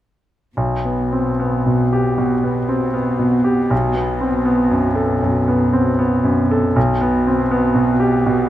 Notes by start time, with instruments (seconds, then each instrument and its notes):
0.56 grand piano B1, cello section B2
0.85 grand piano B3
1.12 grand piano C4
1.40 grand piano B3
1.66 grand piano B2
1.93 grand piano G4
2.18 grand piano B2
2.44 grand piano B3
2.69 grand piano C4
2.94 grand piano B3
3.19 grand piano B2
3.44 grand piano G4
3.70 grand piano B1
3.96 grand piano B3
4.21 grand piano C4
4.45 grand piano B3
4.71 grand piano F#2
4.95 grand piano A4
5.22 grand piano F#2
5.48 grand piano B3
5.73 grand piano C4
5.99 grand piano B3
6.24 grand piano F#2
6.51 grand piano A4
6.76 grand piano B1, cello section B2
7.01 grand piano B3
7.27 grand piano C4
7.51 grand piano B3
7.75 grand piano B2
8.00 grand piano G4
8.26 grand piano B2